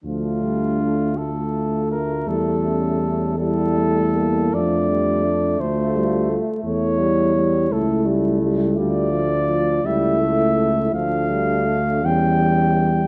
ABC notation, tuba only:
X:1
M:6/8
L:1/8
Q:3/8=55
K:Dm
V:1 name="Tuba" clef=bass
D,,6 | E,,6 | F,,3 D,,2 z | E,,3 ^C,,3 |
D,,3 ^C,,3 | D,,3 E,,3 |]